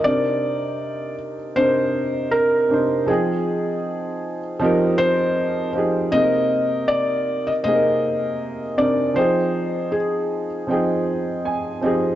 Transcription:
0.04 1.34 C3 medium
0.04 1.35 C4 medium
0.04 1.35 D4 medium
0.04 1.36 D#4 medium
0.04 1.14 D5 loud
0.08 1.36 A#4 medium
1.56 2.54 C3 medium
1.56 2.55 C4 medium
1.56 2.55 D4 medium
1.56 2.56 D#4 medium
1.56 2.34 C5 loud
1.61 2.57 A#4 medium
2.31 3.10 A#4 medium
2.69 3.02 C3 medium
2.69 3.03 C4 medium
2.69 3.03 D4 medium
2.69 3.04 D#4 medium
2.73 3.05 C5 medium
3.06 4.37 F3 medium
3.06 4.38 C4 medium
3.06 4.38 D#4 medium
3.06 4.56 G#4 medium
3.06 4.39 G5 medium
3.11 4.40 G#4 medium
4.59 5.58 F3 loud
4.59 5.59 C4 medium
4.59 5.59 D#4 medium
4.59 5.60 G4 medium
4.64 5.60 A#4 loud
4.98 5.70 C5 loud
5.73 6.06 F3 medium
5.73 6.07 C4 medium
5.73 6.07 D#4 medium
5.73 6.08 G4 medium
5.78 6.09 G#4 medium
6.11 7.41 C3 medium
6.11 7.43 A#3 medium
6.11 7.42 C4 medium
6.11 7.43 D#4 medium
6.11 6.90 D#5 loud
6.16 6.21 G#4 medium
6.22 7.47 A#4 medium
6.88 7.49 D5 loud
7.47 7.52 D#5 medium
7.63 8.62 C3 medium
7.63 8.63 A#3 medium
7.63 8.62 C4 medium
7.63 8.63 D#4 medium
7.63 8.81 D#5 loud
7.68 7.73 G#4 medium
7.74 8.67 A#4 medium
8.76 9.10 C3 medium
8.76 9.10 C4 medium
8.76 9.11 D4 medium
8.76 9.12 D#4 medium
8.76 9.17 D5 medium
8.81 9.12 A#4 medium
9.14 10.45 F3 medium
9.14 10.46 C4 medium
9.14 10.46 D#4 medium
9.14 9.94 C5 medium
9.14 10.47 G5 medium
9.19 10.48 G#4 medium
9.92 11.78 G#4 medium
10.67 11.66 F3 medium
10.67 11.66 C4 medium
10.67 11.67 D#4 medium
10.67 11.67 G5 medium
10.72 11.68 G#4 medium
11.45 11.80 G#5 medium
11.81 12.14 F3 medium
11.81 12.15 C4 medium
11.81 12.15 D#4 medium
11.81 12.15 G4 medium
11.81 12.15 D#5 medium
11.86 12.15 G#4 medium

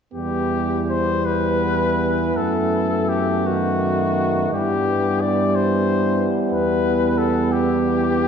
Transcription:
0.12 2.32 E2 soft
0.12 3.47 E3 soft
0.12 2.32 G3 soft
0.12 4.47 B3 soft
0.12 0.84 G4 soft
0.90 1.27 C5 soft
1.26 2.38 B4 soft
2.36 4.48 F#2 soft
2.36 4.55 A3 soft
2.36 3.11 A4 soft
3.09 3.48 G4 soft
3.45 4.55 D#3 soft
3.45 4.52 F#4 soft
4.51 6.25 G2 soft
4.51 8.28 E3 soft
4.51 8.28 G3 soft
4.51 8.28 B3 soft
4.51 5.23 G4 soft
5.21 5.57 D5 soft
5.55 6.29 C5 soft
6.52 8.28 E2 soft
6.52 7.19 B4 medium
7.18 7.54 A4 soft
7.52 8.28 G4 medium

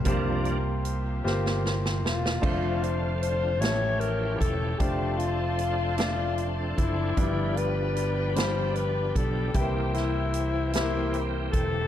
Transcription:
0.05 1.20 C2 medium
0.05 1.20 C3 medium
0.05 0.58 F3 soft
0.05 0.58 A#3 soft
0.05 1.01 A#3 medium
0.05 2.40 A#3 medium
0.05 2.40 C4 medium
0.05 0.58 D4 soft
0.05 1.01 F4 medium
0.05 2.41 F4 medium
0.05 2.40 G4 medium
0.05 1.01 G4 medium
0.05 1.02 C5 medium
0.05 kick medium
0.05 closed hi-hat medium
0.45 closed hi-hat soft
0.85 closed hi-hat medium
1.24 2.04 G1 medium
1.24 2.20 A#3 medium
1.24 2.20 F4 medium
1.24 2.20 G4 medium
1.24 2.20 C5 medium
1.24 snare soft
1.46 snare soft
1.66 snare medium
1.85 snare medium
2.04 2.40 E1 medium
2.04 2.84 F4 medium
2.04 snare medium
2.26 snare medium
2.41 3.61 F1 medium
2.41 3.59 D3 soft
2.41 4.77 F3 soft
2.41 3.38 A3 medium
2.41 3.60 C4 soft
2.41 3.38 D4 medium
2.41 3.59 F4 medium
2.41 3.38 F4 medium
2.41 3.38 C5 medium
2.41 3.60 C5 medium
2.41 3.60 D5 soft
2.41 3.60 F5 soft
2.41 3.60 A5 medium
2.41 kick medium
2.41 crash medium
2.83 3.21 C5 medium
2.83 closed hi-hat soft
3.22 3.62 C5 medium
3.22 closed hi-hat medium
3.60 4.36 A1 medium
3.60 4.76 A2 soft
3.60 4.78 E3 soft
3.60 4.57 A3 medium
3.60 4.78 C#4 soft
3.60 4.57 E4 soft
3.60 4.79 G4 medium
3.60 4.57 G4 soft
3.60 4.01 C#5 medium
3.60 4.57 C#5 medium
3.60 4.79 C#5 medium
3.60 4.79 E5 soft
3.60 4.79 G5 soft
3.60 7.14 A5 medium
3.60 snare medium
3.60 closed hi-hat medium
4.00 4.39 A#4 medium
4.00 closed hi-hat soft
4.40 4.77 E1 medium
4.40 4.80 A4 medium
4.40 kick medium
4.40 closed hi-hat medium
4.79 6.74 F1 medium
4.79 9.51 F3 medium
4.79 5.76 A3 medium
4.79 7.15 C4 soft
4.79 9.51 D4 soft
4.79 5.76 D4 medium
4.79 5.76 F4 medium
4.79 5.19 G4 medium
4.79 7.14 A4 medium
4.79 5.76 C5 medium
4.79 9.51 D5 medium
4.79 7.15 C6 medium
4.79 kick medium
4.79 closed hi-hat medium
5.18 5.96 F4 medium
5.18 closed hi-hat soft
5.59 closed hi-hat medium
5.97 6.94 A3 medium
5.97 6.94 D4 soft
5.97 6.46 F4 medium
5.97 6.94 F4 soft
5.97 6.94 D5 medium
5.97 snare medium
5.97 closed hi-hat medium
6.38 closed hi-hat soft
6.77 7.14 F#1 medium
6.77 7.58 E4 medium
6.77 kick medium
6.77 closed hi-hat medium
7.17 9.11 G1 medium
7.17 8.32 G2 soft
7.17 9.53 B2 soft
7.17 8.13 F3 medium
7.17 8.13 G3 medium
7.17 8.13 D4 medium
7.17 11.87 G4 medium
7.17 8.13 B4 medium
7.17 11.87 G5 medium
7.17 9.53 B5 medium
7.17 kick medium
7.17 closed hi-hat medium
7.57 8.37 B4 medium
7.57 closed hi-hat soft
7.97 closed hi-hat medium
8.36 9.32 G3 soft
8.36 9.32 D4 medium
8.36 9.32 F4 medium
8.36 8.77 C5 medium
8.36 9.32 B5 medium
8.36 snare medium
8.36 closed hi-hat medium
8.75 9.18 B4 medium
8.75 closed hi-hat soft
9.15 9.52 B1 medium
9.15 9.56 A4 medium
9.15 kick medium
9.15 closed hi-hat medium
9.54 11.49 C2 medium
9.54 10.70 C3 soft
9.54 11.87 E3 medium
9.54 11.87 A#3 soft
9.54 10.51 A#3 medium
9.54 11.87 C4 soft
9.54 10.51 E4 medium
9.54 9.96 G4 medium
9.54 10.51 G4 medium
9.54 9.62 B4 medium
9.54 11.87 C5 medium
9.54 11.87 E5 medium
9.54 kick medium
9.54 closed hi-hat medium
9.62 10.54 C5 medium
9.94 10.74 E4 medium
9.94 snare soft
9.94 closed hi-hat soft
10.34 closed hi-hat medium
10.73 11.69 A#3 soft
10.73 11.22 E4 medium
10.73 11.70 E4 soft
10.73 11.70 G4 soft
10.73 10.81 A#4 soft
10.73 snare medium
10.73 closed hi-hat medium
10.81 11.73 C5 medium
11.14 closed hi-hat soft
11.52 11.87 E1 medium
11.52 11.87 A4 medium
11.52 kick medium
11.52 closed hi-hat medium

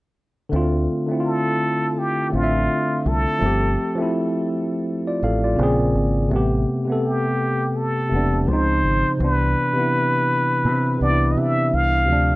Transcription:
0.49 0.87 D2 loud
0.49 0.92 D3 medium
0.49 0.93 A3 medium
0.54 0.94 C4 medium
0.54 0.95 F4 medium
1.06 2.01 D3 medium
1.06 2.02 A3 medium
1.11 2.03 C4 medium
1.11 1.17 E4 medium
1.20 2.08 F4 medium
1.26 2.00 A4 medium
1.99 2.37 G4 medium
2.30 2.67 A1 medium
2.30 3.14 D3 medium
2.30 3.16 A3 medium
2.35 3.17 C4 medium
2.35 2.42 D4 medium
2.35 3.09 F4 medium
2.44 3.21 E5 medium
3.06 3.25 C2 medium
3.06 4.15 A4 medium
3.39 3.76 G1 loud
3.39 3.82 F3 medium
3.39 3.83 A3 medium
3.44 3.84 C4 medium
3.44 3.85 G4 medium
3.95 4.90 F3 medium
3.95 4.91 A3 medium
4.00 4.92 C4 medium
4.00 4.52 E4 medium
5.07 5.22 F4 soft
5.07 5.22 D5 medium
5.23 5.56 A1 medium
5.23 5.43 A4 medium
5.23 5.42 F5 medium
5.44 5.78 F4 medium
5.44 5.78 D5 medium
5.56 5.93 A#1 loud
5.56 6.17 C#3 medium
5.56 6.18 A#3 medium
5.61 6.19 C4 medium
5.61 6.20 G#4 medium
5.95 6.29 G#1 medium
6.29 6.65 A1 loud
6.29 6.71 C3 medium
6.29 6.72 A3 medium
6.34 6.73 B3 medium
6.34 6.75 G4 medium
6.85 7.79 C3 medium
6.85 7.81 A3 medium
6.90 7.82 B3 medium
6.90 7.83 A4 medium
7.04 7.78 G4 medium
7.76 8.50 A4 medium
8.09 8.46 E1 medium
8.09 8.46 C3 medium
8.09 8.47 A3 medium
8.14 8.49 B3 medium
8.14 8.50 D4 medium
8.46 8.82 C#2 medium
8.46 9.06 C#3 medium
8.46 9.07 F3 medium
8.46 9.23 C5 medium
8.51 9.09 C4 medium
8.51 9.10 D#4 medium
8.84 9.03 G#1 medium
9.17 9.54 C2 loud
9.17 9.60 C3 medium
9.17 9.61 E3 medium
9.21 9.62 B3 medium
9.21 9.63 D4 medium
9.21 11.01 B4 loud
9.73 10.68 C3 medium
9.73 10.69 E3 medium
9.78 10.70 B3 medium
9.78 10.72 E4 medium
10.65 10.99 C3 medium
10.97 11.35 C2 medium
10.97 11.82 C3 medium
10.97 11.83 E3 medium
11.02 11.84 B3 medium
11.02 11.10 D4 medium
11.02 11.33 D5 medium
11.11 11.88 E4 medium
11.32 11.39 D#5 medium
11.37 11.71 C3 loud
11.37 11.76 E5 medium
11.73 12.09 C2 medium
11.73 12.36 F5 loud
12.05 12.36 D2 loud
12.05 12.36 C3 medium
12.05 12.36 F3 medium
12.10 12.36 A3 medium
12.10 12.36 D4 medium

